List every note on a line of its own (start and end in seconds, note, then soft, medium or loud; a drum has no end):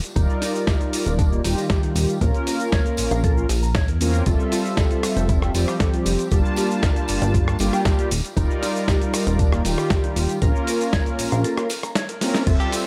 0.04 closed hi-hat soft
0.04 tambourine soft
0.04 cabasa soft
0.15 0.27 D#1 loud
0.15 1.41 G3 medium
0.15 0.23 D#4 loud
0.15 1.41 D#4 medium
0.15 1.42 F4 medium
0.15 1.42 A#4 loud
0.15 1.41 D5 medium
0.15 kick loud
0.15 closed hi-hat medium
0.15 tambourine soft
0.15 cabasa soft
0.30 cabasa soft
0.42 0.52 D#4 medium
0.42 open hi-hat loud
0.42 tambourine medium
0.42 cabasa medium
0.55 tambourine soft
0.55 cabasa soft
0.67 0.77 G4 medium
0.67 kick loud
0.67 snare loud
0.67 closed hi-hat medium
0.67 tambourine soft
0.67 cabasa soft
0.80 0.90 D#4 medium
0.80 closed hi-hat soft
0.80 cabasa soft
0.93 open hi-hat loud
0.93 tambourine medium
0.93 cabasa medium
1.06 1.40 D#1 loud
1.06 1.10 A#4 medium
1.06 closed hi-hat soft
1.06 tambourine medium
1.06 cabasa soft
1.19 1.25 D4 medium
1.19 kick loud
1.19 closed hi-hat medium
1.19 tambourine soft
1.19 cabasa soft
1.32 1.41 A#3 medium
1.32 cabasa soft
1.44 1.55 D#1 medium
1.44 2.18 D#3 medium
1.44 2.18 G3 medium
1.44 1.54 D#4 loud
1.44 2.19 F4 medium
1.44 2.19 G4 loud
1.44 open hi-hat loud
1.44 tambourine loud
1.44 cabasa medium
1.58 1.64 D#5 medium
1.58 tambourine medium
1.58 cabasa soft
1.70 1.80 G4 medium
1.70 kick loud
1.70 snare loud
1.70 closed hi-hat medium
1.70 tambourine soft
1.70 cabasa soft
1.83 1.93 D#4 medium
1.83 closed hi-hat soft
1.83 cabasa soft
1.95 2.06 D#1 medium
1.95 open hi-hat loud
1.95 tambourine medium
1.95 cabasa medium
2.09 closed hi-hat soft
2.09 tambourine soft
2.09 cabasa soft
2.20 2.32 A#1 loud
2.20 3.46 A#3 medium
2.20 3.46 C#4 medium
2.20 3.47 F4 medium
2.20 2.28 A#4 medium
2.20 3.47 A#4 loud
2.20 kick loud
2.20 closed hi-hat medium
2.20 tambourine soft
2.20 cabasa soft
2.34 closed hi-hat soft
2.34 cabasa soft
2.47 2.57 A#4 medium
2.47 open hi-hat loud
2.47 tambourine loud
2.47 cabasa medium
2.60 closed hi-hat soft
2.60 tambourine soft
2.60 cabasa soft
2.72 2.83 C#5 medium
2.72 kick loud
2.72 snare loud
2.72 closed hi-hat medium
2.72 tambourine soft
2.72 cabasa soft
2.86 2.95 A#4 medium
2.86 closed hi-hat soft
2.86 cabasa soft
2.97 3.09 A#1 soft
2.97 open hi-hat loud
2.97 tambourine loud
2.97 cabasa medium
3.11 3.45 A#1 loud
3.11 3.15 F5 medium
3.11 closed hi-hat soft
3.11 tambourine soft
3.11 cabasa soft
3.24 3.31 A4 medium
3.24 kick loud
3.24 closed hi-hat medium
3.24 tambourine soft
3.24 cabasa soft
3.37 3.46 F4 medium
3.37 cabasa soft
3.49 3.90 A#1 loud
3.49 3.60 A#4 loud
3.49 open hi-hat loud
3.49 tambourine medium
3.49 cabasa medium
3.63 3.69 A#5 medium
3.63 tambourine soft
3.63 cabasa soft
3.75 3.85 C#5 medium
3.75 kick loud
3.75 snare loud
3.75 closed hi-hat medium
3.75 tambourine soft
3.75 cabasa soft
3.88 4.22 E2 medium
3.88 3.98 A#4 medium
3.88 closed hi-hat soft
3.88 cabasa soft
4.00 4.23 A#3 loud
4.00 4.23 C4 medium
4.00 4.23 C#4 medium
4.00 4.24 F4 medium
4.00 4.24 A#4 loud
4.00 open hi-hat loud
4.00 tambourine medium
4.00 cabasa medium
4.14 closed hi-hat soft
4.14 tambourine medium
4.14 cabasa soft
4.26 4.37 F1 loud
4.26 5.51 G3 medium
4.26 5.52 C4 medium
4.26 4.33 F4 medium
4.26 5.52 F4 medium
4.26 5.52 A4 loud
4.26 5.52 E5 medium
4.26 kick loud
4.26 closed hi-hat medium
4.26 tambourine soft
4.26 cabasa soft
4.40 cabasa soft
4.52 4.62 F4 medium
4.52 open hi-hat loud
4.52 tambourine medium
4.52 cabasa medium
4.65 tambourine soft
4.65 cabasa soft
4.77 4.88 A4 medium
4.77 kick loud
4.77 snare loud
4.77 closed hi-hat medium
4.77 tambourine soft
4.77 cabasa soft
4.91 5.00 F4 medium
4.91 closed hi-hat soft
4.91 cabasa soft
5.03 cross-stick medium
5.03 open hi-hat loud
5.03 tambourine medium
5.03 cabasa medium
5.17 5.51 F1 loud
5.17 5.20 C5 medium
5.17 closed hi-hat soft
5.17 tambourine soft
5.17 cabasa soft
5.29 5.36 E4 loud
5.29 kick loud
5.29 closed hi-hat medium
5.29 tambourine soft
5.29 cabasa soft
5.42 5.52 C4 medium
5.42 cross-stick medium
5.42 cabasa soft
5.54 5.65 F1 medium
5.54 6.29 F3 medium
5.54 6.28 G3 medium
5.54 6.28 C4 medium
5.54 5.65 F4 loud
5.54 6.29 G4 medium
5.54 open hi-hat loud
5.54 tambourine medium
5.54 cabasa medium
5.68 5.74 F5 medium
5.68 cross-stick medium
5.68 tambourine soft
5.68 cabasa soft
5.80 5.90 A4 medium
5.80 kick loud
5.80 snare loud
5.80 closed hi-hat medium
5.80 tambourine soft
5.80 cabasa soft
5.94 6.03 F4 medium
5.94 closed hi-hat soft
5.94 cabasa soft
6.06 6.16 F1 medium
6.06 open hi-hat loud
6.06 tambourine medium
6.06 cabasa medium
6.19 closed hi-hat soft
6.19 tambourine soft
6.19 cabasa soft
6.31 6.42 G1 loud
6.31 7.56 G3 medium
6.31 7.57 A#3 medium
6.31 7.57 D4 medium
6.31 7.57 F4 medium
6.31 6.38 G4 medium
6.31 7.57 A5 loud
6.31 kick loud
6.31 closed hi-hat medium
6.31 tambourine soft
6.31 cabasa soft
6.45 cabasa soft
6.56 6.67 G4 medium
6.56 open hi-hat loud
6.56 tambourine medium
6.56 cabasa medium
6.71 tambourine soft
6.71 cabasa soft
6.82 6.93 A#4 medium
6.82 kick loud
6.82 snare loud
6.82 closed hi-hat medium
6.82 tambourine soft
6.82 cabasa soft
6.96 7.05 G4 medium
6.96 closed hi-hat soft
6.96 cabasa soft
7.08 7.19 G1 soft
7.08 open hi-hat loud
7.08 tambourine medium
7.08 cabasa medium
7.21 7.56 G1 loud
7.21 7.25 D5 medium
7.21 closed hi-hat medium
7.21 tambourine soft
7.21 cabasa soft
7.34 7.41 F4 medium
7.34 kick loud
7.34 closed hi-hat medium
7.34 tambourine soft
7.34 cabasa soft
7.47 7.57 D4 medium
7.47 cross-stick medium
7.47 cabasa soft
7.59 7.70 G1 medium
7.59 8.09 G3 medium
7.59 8.10 A#3 medium
7.59 8.10 D4 medium
7.59 8.10 F4 medium
7.59 7.70 G4 loud
7.59 8.10 G4 medium
7.59 open hi-hat loud
7.59 tambourine medium
7.59 cabasa medium
7.73 7.79 G5 medium
7.73 cross-stick medium
7.73 tambourine soft
7.73 cabasa soft
7.85 7.95 A#4 medium
7.85 kick loud
7.85 snare loud
7.85 closed hi-hat medium
7.85 tambourine soft
7.85 cabasa soft
7.99 8.08 G4 medium
7.99 closed hi-hat medium
7.99 cabasa soft
8.11 8.22 D#1 medium
8.11 open hi-hat medium
8.11 tambourine medium
8.11 cabasa medium
8.24 closed hi-hat soft
8.24 tambourine soft
8.24 cabasa soft
8.36 8.47 D#1 loud
8.36 9.62 G3 loud
8.36 8.43 D#4 medium
8.36 9.62 D#4 medium
8.36 9.62 F4 medium
8.36 9.63 A#4 loud
8.36 9.62 D5 medium
8.36 kick loud
8.36 closed hi-hat medium
8.36 tambourine soft
8.36 cabasa soft
8.51 cabasa soft
8.62 8.72 D#4 medium
8.62 open hi-hat loud
8.62 tambourine medium
8.62 cabasa medium
8.75 tambourine soft
8.75 cabasa soft
8.88 8.98 G4 medium
8.88 kick loud
8.88 snare loud
8.88 closed hi-hat medium
8.88 tambourine soft
8.88 cabasa soft
9.01 9.11 D#4 medium
9.01 closed hi-hat soft
9.01 cabasa soft
9.13 cross-stick medium
9.13 open hi-hat loud
9.13 tambourine medium
9.13 cabasa medium
9.27 9.61 D#1 loud
9.27 9.31 A#4 medium
9.27 closed hi-hat medium
9.27 tambourine soft
9.27 cabasa soft
9.39 9.46 D4 loud
9.39 kick loud
9.39 closed hi-hat medium
9.39 tambourine soft
9.39 cabasa soft
9.52 9.62 A#3 medium
9.52 cross-stick medium
9.52 cabasa soft
9.64 9.75 D#1 medium
9.64 10.39 D#3 medium
9.64 10.38 G3 medium
9.64 9.75 D#4 loud
9.64 10.39 F4 medium
9.64 10.39 G4 loud
9.64 open hi-hat loud
9.64 tambourine medium
9.64 cabasa medium
9.78 9.84 D#5 medium
9.78 cross-stick medium
9.78 tambourine soft
9.78 cabasa soft
9.90 10.01 G4 medium
9.90 kick loud
9.90 snare loud
9.90 closed hi-hat medium
9.90 tambourine soft
9.90 cabasa soft
10.04 10.13 D#4 medium
10.04 closed hi-hat soft
10.04 cabasa soft
10.16 10.27 D#1 medium
10.16 open hi-hat medium
10.16 tambourine medium
10.16 cabasa medium
10.29 closed hi-hat soft
10.29 tambourine soft
10.29 cabasa soft
10.41 10.52 A#1 loud
10.41 11.67 A#3 medium
10.41 11.67 C#4 medium
10.41 11.67 F4 medium
10.41 10.49 A#4 medium
10.41 11.68 A#4 loud
10.41 kick loud
10.41 closed hi-hat medium
10.41 tambourine soft
10.41 cabasa soft
10.55 cabasa soft
10.67 10.78 A#4 loud
10.67 open hi-hat loud
10.67 tambourine medium
10.67 cabasa medium
10.81 tambourine soft
10.81 cabasa soft
10.93 11.03 C#5 medium
10.93 kick loud
10.93 snare loud
10.93 closed hi-hat medium
10.93 tambourine soft
10.93 cabasa soft
11.06 11.16 A#4 medium
11.06 closed hi-hat soft
11.06 cabasa soft
11.19 11.30 A#1 soft
11.19 open hi-hat loud
11.19 tambourine medium
11.19 cabasa medium
11.32 11.45 A#1 loud
11.32 11.36 F5 medium
11.32 closed hi-hat medium
11.32 tambourine soft
11.32 cabasa soft
11.44 11.51 A4 medium
11.44 closed hi-hat medium
11.44 tambourine soft
11.44 cabasa soft
11.57 11.67 F4 medium
11.57 cross-stick medium
11.57 closed hi-hat soft
11.57 cabasa soft
11.70 11.80 A#4 loud
11.70 open hi-hat loud
11.70 tambourine medium
11.70 cabasa medium
11.83 11.90 A#5 medium
11.83 cross-stick medium
11.83 closed hi-hat soft
11.83 tambourine medium
11.83 cabasa soft
11.95 12.06 C#5 medium
11.95 snare loud
11.95 closed hi-hat medium
11.95 tambourine soft
11.95 cabasa soft
12.09 12.18 A#4 medium
12.09 closed hi-hat medium
12.09 cabasa soft
12.21 12.44 A#3 loud
12.21 12.44 C4 medium
12.21 12.44 C#4 medium
12.21 12.44 F4 medium
12.21 12.44 A#4 loud
12.21 snare medium
12.21 open hi-hat loud
12.21 tambourine medium
12.21 cabasa medium
12.34 snare medium
12.34 open hi-hat medium
12.34 tambourine soft
12.34 cabasa soft
12.46 12.57 F1 loud
12.46 12.87 G3 medium
12.46 12.87 C4 medium
12.46 12.54 F4 loud
12.46 12.87 F4 medium
12.46 12.87 A4 loud
12.46 12.87 E5 medium
12.46 kick loud
12.46 closed hi-hat medium
12.46 crash loud
12.46 tambourine soft
12.46 cabasa soft
12.60 12.75 G4 medium
12.60 closed hi-hat soft
12.60 cabasa soft
12.72 12.82 F4 medium
12.72 open hi-hat loud
12.72 tambourine loud
12.72 cabasa medium